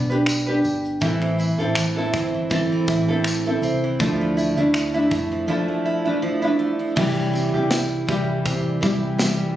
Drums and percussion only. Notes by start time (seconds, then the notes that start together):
0.11 shaker
0.26 finger snap, tambourine, shaker
0.64 tambourine, shaker
0.85 shaker
1.01 kick, tambourine, shaker
1.22 finger snap
1.39 tambourine, shaker
1.75 finger snap, tambourine, shaker
2.13 kick, tambourine, shaker
2.50 kick, tambourine, shaker
2.88 kick, tambourine, shaker
3.24 finger snap, tambourine, shaker
3.62 tambourine, shaker
4.00 kick, tambourine, shaker
4.38 tambourine, shaker
4.57 shaker
4.74 finger snap, tambourine, shaker
5.11 kick, tambourine, shaker
6.97 kick, crash
7.35 tambourine, shaker
7.71 snare, tambourine, shaker
8.09 kick, tambourine, shaker
8.46 kick, tambourine, shaker
8.83 kick, tambourine, shaker
9.19 snare, tambourine, shaker